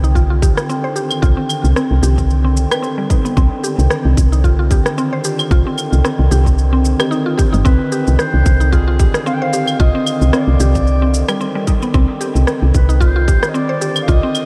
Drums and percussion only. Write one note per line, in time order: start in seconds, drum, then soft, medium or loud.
0.04 shaker soft
0.16 kick medium
0.16 shaker soft
0.42 kick loud
0.42 shaker medium
0.57 cross-stick medium
0.57 shaker soft
0.69 shaker soft
0.96 shaker medium
1.11 claves medium
1.11 shaker soft
1.23 kick loud
1.23 shaker soft
1.49 claves medium
1.49 shaker medium
1.65 shaker soft
1.76 cross-stick medium
1.76 shaker soft
2.03 shaker medium
2.18 kick medium
2.18 shaker soft
2.30 shaker soft
2.57 shaker medium
2.71 cross-stick medium
2.71 claves medium
2.71 shaker soft
2.84 shaker soft
3.10 kick loud
3.10 shaker medium
3.25 shaker soft
3.37 kick loud
3.37 shaker soft
3.64 shaker medium
3.79 shaker soft
3.90 cross-stick medium
3.90 shaker soft
4.17 kick loud
4.17 shaker medium
4.33 shaker soft
4.44 kick medium
4.44 shaker soft
4.71 kick loud
4.71 shaker medium
4.86 cross-stick medium
4.86 shaker soft
4.98 shaker soft
5.24 shaker medium
5.39 claves medium
5.39 shaker soft
5.51 kick loud
5.51 shaker soft
5.78 claves medium
5.78 shaker medium
5.93 shaker soft
6.05 cross-stick medium
6.05 shaker soft
6.32 shaker medium
6.46 kick medium
6.46 shaker soft
6.58 shaker soft
6.85 shaker medium
7.00 cross-stick medium
7.00 claves medium
7.00 shaker soft
7.12 shaker soft
7.39 kick loud
7.39 shaker medium
7.54 shaker soft
7.66 kick loud
7.66 shaker soft
7.92 shaker medium
8.07 shaker soft
8.19 cross-stick medium
8.19 shaker soft
8.46 kick loud
8.46 shaker medium
8.61 shaker soft
8.73 kick medium
8.73 shaker soft
8.99 kick loud
8.99 shaker medium
9.14 cross-stick medium
9.14 shaker soft
9.27 shaker soft
9.53 shaker medium
9.68 claves medium
9.68 shaker soft
9.80 kick loud
9.80 shaker soft
10.06 claves medium
10.06 shaker medium
10.22 shaker soft
10.33 cross-stick medium
10.33 shaker soft
10.60 shaker medium
10.75 kick medium
10.75 shaker soft
10.87 shaker soft
11.14 shaker medium
11.28 cross-stick medium
11.28 claves medium
11.28 shaker soft
11.41 shaker soft
11.67 kick loud
11.67 shaker medium
11.82 shaker soft
11.94 kick loud
11.94 shaker soft
12.21 shaker medium
12.36 shaker soft
12.47 cross-stick medium
12.47 shaker soft
12.75 kick medium
12.75 shaker medium
12.90 shaker soft
13.01 kick medium
13.01 shaker soft
13.28 kick loud
13.28 shaker medium
13.43 cross-stick medium
13.43 shaker soft
13.55 shaker soft
13.81 shaker medium
13.96 claves medium
13.96 shaker soft
14.08 kick loud
14.08 shaker soft
14.35 claves medium
14.35 shaker medium